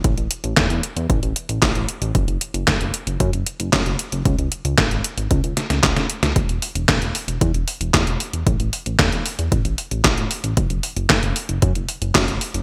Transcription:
<<
  \new Staff \with { instrumentName = "Analog synth bass" } { \clef bass \time 4/4 \key a \lydian \tempo 4 = 114 a,,16 a,,16 r16 a,,16 e,16 e,16 r16 e,16 a,,16 a,,16 r16 a,,16 a,,16 a,,16 r16 a,,16 | fis,,16 fis,,16 r16 fis,,16 fis,,16 fis,,16 r16 fis,,16 fis,16 fis,,16 r16 fis,,16 fis,16 fis,,16 r16 fis,,16 | cis,16 cis,16 r16 cis,16 gis,,16 gis,,16 r16 gis,,16 cis,16 cis,16 r16 cis,16 cis,16 cis,16 r16 cis,16 | e,,16 e,,16 r16 e,,16 e,,16 e,,16 r16 e,,16 e,16 e,,16 r16 e,,16 e,16 e,,16 r16 e,,16 |
a,,16 a,,16 r16 a,,16 e,16 e,16 r16 e,16 a,,16 a,,16 r16 a,,16 a,,16 a,,16 r16 a,,16 | fis,,16 fis,,16 r16 fis,,16 fis,,16 fis,,16 r16 fis,,16 fis,16 fis,,16 r16 fis,,16 fis,16 fis,,16 r16 fis,,16 | }
  \new DrumStaff \with { instrumentName = "Drums" } \drummode { \time 4/4 <hh bd>16 hh16 hh16 hh16 <hc hh bd sn>16 hh16 hh16 hh16 <hh bd>16 hh16 hh16 hh16 <hc hh bd sn>16 hh16 hh16 hh16 | <hh bd>16 hh16 hh16 hh16 <hc hh bd sn>16 hh16 hh16 hh16 <hh bd>16 hh16 hh16 hh16 <hc hh bd sn>16 hh16 hh16 hh16 | <hh bd>16 hh16 hh16 hh16 <hc hh bd sn>16 hh16 hh16 hh16 <hh bd>16 hh16 <hh sn>16 <hh sn>16 <hc hh bd sn>16 <hh sn>16 hh16 <hh sn>16 | <hh bd>16 hh16 hho16 hh16 <hc hh bd sn>16 hh16 hho16 hh16 <hh bd>16 hh16 hho16 hh16 <hc hh bd sn>16 hh16 hho16 hh16 |
<hh bd>16 hh16 hho16 hh16 <hc hh bd sn>16 hh16 hho16 hh16 <hh bd>16 hh16 hho16 hh16 <hc hh bd sn>16 hh16 hho16 hh16 | <hh bd>16 hh16 hho16 hh16 <hc hh bd sn>16 hh16 hho16 hh16 <hh bd>16 hh16 hho16 hh16 <hc hh bd sn>16 hh16 hho16 hh16 | }
>>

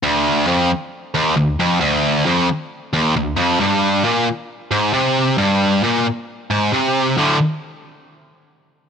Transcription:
\new Staff \with { instrumentName = "Distorted electric guitar" } { \clef bass \time 4/4 \key d \minor \tempo 4 = 134 d,4 f,8 r4 ees,8 d,8 f,8 | d,4 f,8 r4 ees,8 d,8 f,8 | g,4 bes,8 r4 gis,8 c4 | g,4 bes,8 r4 gis,8 c4 |
<d, a, d>8 r2. r8 | }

